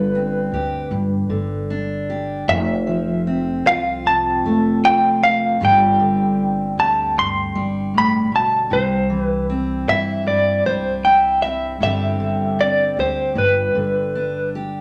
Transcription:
Already playing: G1 G2 D3 B4
0.15 C4
0.52 D2 G4
0.91 G1 G2
1.29 G1 D3
1.70 D4
2.10 G4
2.48 F1 F2 E5
2.87 F3
3.27 C4
3.66 C2 F4 F5
4.05 C3 A5
4.44 F1 A3
4.84 F4 G5
5.23 C4 F5
5.60 G1 G2 D3 G3 C4 G4
5.65 G5
6.00 D3
6.78 D2 G4 A5
7.17 G2 C6
7.55 G1 G3
7.94 A2
7.98 B5
8.32 B2 A5
8.70 C2 C3 C5
9.10 E3
9.23 B4
9.50 C4
9.87 G2 E4 E5
10.26 G2 D5
10.65 C2 G3 C5
11.05 E4 G5
11.42 C4 E5
11.80 G1 G2 D3 G3 C4 G4 E5
12.20 D3
12.59 C4 D5
12.97 D2 G4 C5
13.35 G1 G2 B4
13.75 G1 D3
14.15 D4
14.55 G4

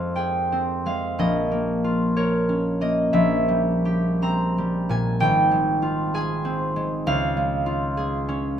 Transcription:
Already playing: F2 G#3 C4 F4 G#4 C5
0.16 G#4 G5
0.52 C4
0.86 G#3 F5
1.19 A#1 D#5
1.51 A#3
1.84 F4
2.17 A#4 C#5
2.49 C#4
2.81 A#3 D#5
3.13 A#1 E5
3.48 G3
3.85 G4
4.22 C4 A#5
4.58 G3
4.89 A#2 G#5
5.20 G#1 G5
5.51 G#3
5.82 F4
6.14 G#4 G#5
6.45 C4
6.76 G#3
7.07 C#2 F5
7.37 G#3
7.66 F4
7.97 G#4
8.29 C#4

